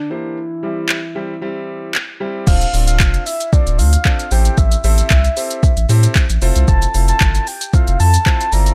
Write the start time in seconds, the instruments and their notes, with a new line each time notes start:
Already playing: soft synth lead D4
0.10 grand piano A#3 D4 G4 C5, soft synth lead E4
0.63 grand piano G3 C4 E4 G4
0.89 clap
1.15 grand piano G3 C4 E4 G4
1.41 grand piano G3 C4 E4 G4
1.95 clap
2.20 grand piano G3 C4 E4 G4
2.47 sub bass D1, grand piano C4 D4 F4 A4 C5, soft synth lead F5, kick, crash, shaker
2.61 closed hi-hat, shaker
2.73 sub bass D1, grand piano C4 D4 F4 A4 D5, open hi-hat, shaker
2.87 soft synth lead F5, closed hi-hat, shaker
3.00 sub bass F1, kick, clap, shaker
3.14 closed hi-hat, shaker
3.26 soft synth lead E5, open hi-hat, shaker
3.40 closed hi-hat, shaker
3.52 grand piano C4 D4 F4 A4 C5, soft synth lead D5, kick, shaker
3.66 sub bass D1, closed hi-hat, shaker
3.79 sub bass D2, soft synth lead F5, open hi-hat, shaker
3.93 closed hi-hat, shaker
4.05 grand piano C4 D4 F4 A4 D5, kick, clap, shaker
4.19 closed hi-hat, shaker
4.31 sub bass A1, grand piano C4 E4 G4 A4 C5, soft synth lead G5, open hi-hat, shaker
4.45 closed hi-hat, shaker
4.58 sub bass A1, soft synth lead E5, kick, shaker
4.72 closed hi-hat, shaker
4.84 sub bass A1, grand piano C4 E4 G4 A4 C5, soft synth lead E5, open hi-hat, shaker
4.98 closed hi-hat, shaker
5.10 sub bass C2, kick, clap, shaker
5.24 closed hi-hat, shaker
5.36 grand piano C4 E4 G4 A4 C5, open hi-hat, shaker
5.51 closed hi-hat, shaker
5.63 kick, shaker
5.77 sub bass A1, closed hi-hat, shaker
5.89 sub bass A2, grand piano C4 E4 G4 A4 C5, open hi-hat, shaker
6.03 closed hi-hat, shaker
6.15 kick, clap, shaker
6.29 sub bass A1, closed hi-hat, shaker
6.42 sub bass F1, grand piano C4 E4 F4 A4 C5, open hi-hat, shaker
6.56 sub bass C2, closed hi-hat, shaker
6.68 sub bass F1, soft synth lead A5, kick, shaker
6.82 closed hi-hat, shaker
6.94 sub bass F1, grand piano C4 E4 F4 A4 C5, open hi-hat, shaker
7.08 soft synth lead A5, closed hi-hat, shaker
7.20 sub bass G1, kick, clap, shaker
7.35 closed hi-hat, shaker
7.47 soft synth lead G5, open hi-hat, shaker
7.61 closed hi-hat, shaker
7.73 grand piano C4 E4 F4 A4 C5, soft synth lead F5, kick, shaker
7.87 sub bass F1, closed hi-hat, shaker
8.00 sub bass F2, soft synth lead A5, open hi-hat, shaker
8.14 closed hi-hat, shaker
8.26 grand piano C4 E4 F4 A4 C5, kick, clap, shaker
8.41 closed hi-hat, shaker
8.52 sub bass G1, grand piano C4 E4 F4 A4 D5, soft synth lead A#5, open hi-hat, shaker
8.66 closed hi-hat, shaker